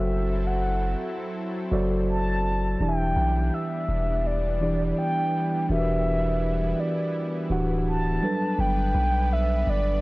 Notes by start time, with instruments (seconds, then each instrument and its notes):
Already playing: 808-style bass F#1, tine electric piano F#3 F#4 A4 C5 E5, analog synth pad F#3 C4 E4 A4, soft synth lead E5
0.47 soft synth lead F#5
1.71 808-style bass F#1, tine electric piano F#3 F#4 A4 C5 D5
2.10 soft synth lead A5
2.80 808-style bass E1, analog synth pad E3 G3 B3 D4, tine electric piano E3 D4 E4 G4 D5, soft synth lead G5
2.89 tine electric piano E5
3.16 808-style bass B1
3.54 soft synth lead E5
3.88 808-style bass E1
4.26 soft synth lead D5
4.61 tine electric piano E3 D4 E4 G4 D5
4.98 soft synth lead G5
5.69 808-style bass E1, tine electric piano E3 D4 F#4 G4 A#4, analog synth pad E4, soft synth lead E5
5.78 tine electric piano B4
6.80 soft synth lead D5
7.50 808-style bass D1, tine electric piano E3 D4 F#4 G4 F#5
7.88 soft synth lead A5
8.22 tine electric piano F#3 G3 D4 A4 B4, analog synth pad B3 D4 B4
8.59 808-style bass G1, soft synth lead G5
8.94 808-style bass B1
9.33 soft synth lead E5
9.67 808-style bass G1, soft synth lead D5